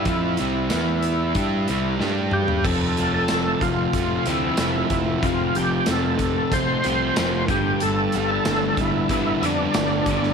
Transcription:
<<
  \new Staff \with { instrumentName = "Tonewheel organ" } { \time 4/4 \key f \lydian \tempo 4 = 93 e'2. r8 g'8 | a'8. a'8. f'4 e'4. | f'8 g'8 a'4 c''4. g'8 | a'8. a'8. e'4 d'4. | }
  \new Staff \with { instrumentName = "Distorted electric guitar" } { \clef bass \time 4/4 \key f \lydian <f c' f'>8 <c g c'>8 <e b e'>4 <g d' g'>8 <c g c'>8 <g d' g'>4 | f,8 f8 c8 f8 a8 c'8 f8 c8 | f,8 f8 c8 f8 a8 c'8 f8 g,8 | g,8 g8 d8 g8 b8 d'8 g8 d8 | }
  \new Staff \with { instrumentName = "Overdriven electric guitar" } { \clef bass \time 4/4 \key f \lydian <f c' f'>8 <c g c'>8 <e b e'>4 <g d' g'>8 <c g c'>8 <g d' g'>4 | <f, c f>2~ <f, c f>8 <f, c f>8 <f, c f>4 | <f, c f>2~ <f, c f>8 <f, c f>8 <f, c f>8 <g, d g>8~ | <g, d g>2 <g, d g>8 <g, d g>4 <g, d g>8 | }
  \new Staff \with { instrumentName = "Picked electric bass" } { \clef bass \time 4/4 \key f \lydian f,8 c,8 e,4 g,8 c,8 g,4 | f,,8 f,,8 f,,8 f,,8 f,,8 d,8 f,,8 f,,8 | f,,8 f,,8 f,,4 f,,8 c,8 f,,8 g,,8 | g,,8 g,,8 g,,8 g,,8 g,,8 f,8 g,,8 g,,8 | }
  \new DrumStaff \with { instrumentName = "Drums" } \drummode { \time 4/4 <hh bd>8 hh8 <hh sn tamb>8 hh8 <hh bd>8 hh8 sn8 toml16 tomfh16 | <cymc bd>8 hh8 <hh sn tamb>8 <hh bd>8 <hh bd>8 hh8 <hh sn tamb>8 <hh bd>8 | <hh bd>8 hh8 <hh sn tamb>8 <hh bd>8 <hh bd>8 hh8 <hh sn tamb>8 <hh bd>8 | hh8 hh8 <hh sn tamb>8 <hh bd>8 <hh bd>8 hh8 <hh sn tamb>8 <hh bd>16 sn16 | }
>>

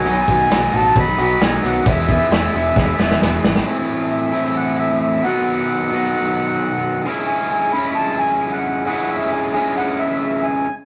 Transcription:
<<
  \new Staff \with { instrumentName = "Accordion" } { \time 4/4 \key cis \minor \tempo 4 = 133 gis''4. a''8 b''8 b''8 gis''8 fis''8 | e''2. r4 | r4 e''4 fis''8 e''8 e''8 fis''8~ | fis''2.~ fis''8 r8 |
gis''8 gis''8 b''8 a''8 gis''8. fis''8. fis''8 | e''8 gis''8 gis''8 fis''8 e''4 gis''8. r16 | }
  \new Staff \with { instrumentName = "Clean electric guitar" } { \time 4/4 \key cis \minor <fis b dis' fis'>8 <fis b dis' fis'>8 r8 <fis b dis' fis'>8 r8 <fis b dis' fis'>8 r8 <fis b dis' fis'>8 | r8 <e b dis' gis'>8 r8 <e b dis' gis'>8 r8 <e b dis' gis'>8 r8 <e b dis' gis'>8 | <a, e c' e' a'>4. <a, e c' e' a'>2 <b, fis b dis' fis'>8~ | <b, fis b dis' fis'>4 <b, fis b dis' fis'>2~ <b, fis b dis' fis'>8 <cis e gis cis' e'>8~ |
<cis e gis cis' e'>4 <cis e gis cis' e'>2~ <cis e gis cis' e'>8 <cis e gis cis' e'>8~ | <cis e gis cis' e'>4 <cis e gis cis' e'>2~ <cis e gis cis' e'>8 r8 | }
  \new Staff \with { instrumentName = "Overdriven electric guitar" } { \time 4/4 \key cis \minor <b, dis fis b dis'>8 <fis b dis'>8 <b, dis fis b dis'>8 <fis b dis'>4 <fis b dis'>8 <dis fis b dis'>4 | <e gis b e'>8 <gis b e'>8 <e gis b e'>8 <gis b e'>4 <gis b e'>8 <e gis b e'>4 | <a, e a c' e'>4. <a, e a c' e'>2 <b, dis fis b dis'>8~ | <b, dis fis b dis'>4 <b, dis fis b dis'>2~ <b, dis fis b dis'>8 <cis gis cis' e'>8~ |
<cis gis cis' e'>4 <cis gis cis' e'>2~ <cis gis cis' e'>8 <cis gis cis' e'>8~ | <cis gis cis' e'>4 <cis gis cis' e'>2~ <cis gis cis' e'>8 r8 | }
  \new Staff \with { instrumentName = "Picked electric bass" } { \clef bass \time 4/4 \key cis \minor b,,8 b,,8 b,,8 a,,8 b,,8 b,,8 b,,8 b,,8 | e,,4 e,,8 e,,8 e,,8 e,,8 e,,8 gis,,8 | r1 | r1 |
r1 | r1 | }
  \new DrumStaff \with { instrumentName = "Drums" } \drummode { \time 4/4 hho8 <hho bd>8 <hho sn>8 hho8 <hho bd>8 hho8 <hho sn>8 <hho sn>8 | <hho bd>8 <hho bd>8 <hho sn>8 hho8 <bd sn>8 sn16 sn16 sn8 sn16 sn16 | r4 r4 r4 r4 | r4 r4 r4 r4 |
r4 r4 r4 r4 | r4 r4 r4 r4 | }
>>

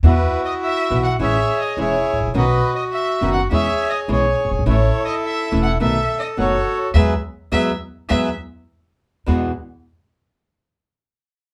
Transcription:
<<
  \new Staff \with { instrumentName = "Violin" } { \time 4/4 \key e \major \tempo 4 = 104 \tuplet 3/2 { b'4 dis''8 e''4 fis''8 e''4 dis''8 } cis''8. r16 | \tuplet 3/2 { b'4 dis''8 e''4 fis''8 e''4 dis''8 } cis''8. r16 | \tuplet 3/2 { cis''4 dis''8 e''4 fis''8 e''4 dis''8 } cis''8. r16 | e''8 r8 e''8 r8 e''8 r4. |
r1 | }
  \new Staff \with { instrumentName = "Bandoneon" } { \time 4/4 \key e \major << { \tuplet 3/2 { b'4 dis''8 e''4 fis''8 e''4 dis''8 } cis''8. r16 | \tuplet 3/2 { b'4 dis''8 e''4 fis''8 e''4 dis''8 } cis''8. r16 | \tuplet 3/2 { cis''4 dis''8 e''4 fis''8 e''4 dis''8 } cis''8. r16 | <gis' b' e''>8 r8 <gis' b' e''>8 r8 <gis' b' e''>8 r4. |
r1 | } \\ { <e' fis'>2 <gis' cis''>4 <e' gis'>4 | <fis' dis''>2 <gis' cis''>4 gis'4 | <e' a'>2 a'4 <fis' a'>4 | r1 |
r1 | } >> }
  \new Staff \with { instrumentName = "Nylon-string guitar" } { \time 4/4 \key e \major <b, e b e' fis'>8 r4 <b, e b e' fis'>8 <e gis cis' e'>8 r8 <e gis cis' e'>8 r8 | <b, dis cis' fis'>8 r4 <b, dis cis' fis'>8 <b, e gis cis' e'>8 r8 <b, e gis cis' e'>8 r8 | <e a cis' e'>8 r4 <e a cis' e'>8 <b, dis a b fis'>8 r8 <b, dis a b fis'>8 r8 | <fis gis b>8 r8 <fis gis b>8 r8 <fis gis b>8 r4. |
<e, b, e gis b fis'>8 r2. r8 | }
  \new Staff \with { instrumentName = "Upright bass" } { \clef bass \time 4/4 \key e \major e,16. r4 r32 b,,16. r32 a,,16. r8 r32 e,,16. r16 gis,,32 a,,32 ais,,32 | b,,16. r4 r32 fis,,16. r32 e,16. r8 r32 b,,16. r16 fis,,32 g,,32 gis,,32 | a,,16. r4 r32 e,,16. r32 b,,16. r8 r32 fis,,16. r8 r32 | e,16. r8 r32 e,16. r8 r32 e,16. r4. r32 |
e,8 r2. r8 | }
>>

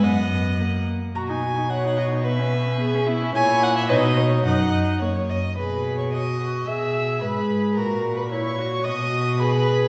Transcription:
<<
  \new Staff \with { instrumentName = "Violin" } { \time 2/4 \key b \major \tempo 4 = 109 fis''4. r8 | ais''16 gis''8. fis''8 dis''8 | e''4. r8 | gis''8 fis''16 e''16 dis''4 |
fis''4 r4 | b''8. cis'''16 dis'''4 | e'''4 b''4 | ais''8. b''16 cis'''4 |
dis'''4 b''4 | }
  \new Staff \with { instrumentName = "Violin" } { \time 2/4 \key b \major dis''4. r8 | r4 cis''4 | b'4 gis'8 e'8 | cis''4 b'8 cis''8 |
dis''4 cis''8 dis''8 | b'8. cis''16 dis''4 | e''4 b'4 | ais'8. b'16 cis''4 |
dis''4 b'4 | }
  \new Staff \with { instrumentName = "Viola" } { \time 2/4 \key b \major b4 ais8. r16 | fis'16 dis'16 fis'16 dis'16 fis'16 dis'16 fis'16 dis'16 | b16 cis'16 b16 cis'16 b16 cis'16 b16 cis'16 | e'4 dis'4 |
dis'4 ais8. r16 | gis'4 fis'8 fis'8 | gis'4 gis'4 | fis'4 e'8 fis'8 |
fis'4 gis'4 | }
  \new Staff \with { instrumentName = "Cello" } { \clef bass \time 2/4 \key b \major fis,4. r8 | b,2~ | b,2 | ais,4 b,4 |
fis,4 fis,8 r8 | b,2 | b,4 gis,4 | ais,2 |
b,2 | }
>>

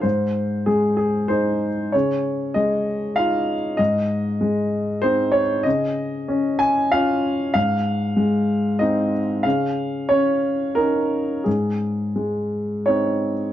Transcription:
\new Staff \with { instrumentName = "Grand piano" } { \time 3/4 \key des \major \tempo 4 = 95 << { c''4 aes'8 aes'8 c''4 | des''4 ees''4 f''4 | ees''2 c''8 des''8 | ees''4. aes''8 f''4 |
f''2 ees''8 r8 | f''4 des''4 bes'4 | aes'2 des''4 | } \\ { aes,4 aes4 <ees' aes'>4 | des4 aes4 <ees' f'>4 | aes,4 aes4 <c' ees'>4 | des4 des'4 <des' f'>4 |
aes,4 aes4 <c' ees'>4 | des4 des'4 <des' ees'>4 | aes,4 aes4 <c' ees'>4 | } >> }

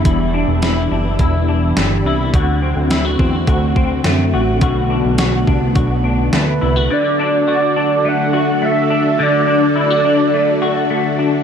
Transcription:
<<
  \new Staff \with { instrumentName = "Soft synth lead" } { \time 4/4 \key d \mixolydian \tempo 4 = 105 r1 | r1 | r2. b'4 | d''4 d''4 fis''4 e''4 |
d''4 d''2~ d''8 r8 | }
  \new Staff \with { instrumentName = "Clean electric guitar" } { \time 4/4 \key d \mixolydian <e, g d' e'>8 d'8 e'8 d'8 e'8 d'8 g8 e'8 | <d fis'>8 c'8 e'16 fis'16 c'8 fis'8 c'8 a8 fis'8 | <b, fis'>8 d'8 fis'8 d'8 fis'8 d'8 a8 e'16 fis'16 | d8 d'8 fis'8 d'8 a8 fis'8 a8 d'8 |
d8 d'8 e'16 fis'16 d'8 a8 fis'8 a8 d'8 | }
  \new Staff \with { instrumentName = "String machine" } { \time 4/4 \key d \mixolydian << { <b d' g'>1 | <c' fis'>1 | b1 | <fis' a'>1~ |
<fis' a'>1 | } \\ { e1 | <d a>1~ | <d a>1 | <d d'>1~ |
<d d'>1 | } >> }
  \new Staff \with { instrumentName = "Analog synth bass" } { \clef bass \time 4/4 \key d \mixolydian e,,8. e,,8. fis,,8 e,,4 g,,8 c,8 | d,8. d,8. e,8 d,4 fis,8 a,,8 | b,,8. b,,8. c,8 b,,4 d,8 c,8 | r1 |
r1 | }
  \new DrumStaff \with { instrumentName = "Drums" } \drummode { \time 4/4 <hh bd>4 <hh sn>4 <hh bd>4 <hh sn>4 | <hh bd>4 <hh sn>8 bd8 <hh bd>8 bd8 <hh sn>4 | <hh bd>4 <hh sn>8 bd8 <hh bd>4 <hh sn>4 | r4 r4 r4 r4 |
r4 r4 r4 r4 | }
>>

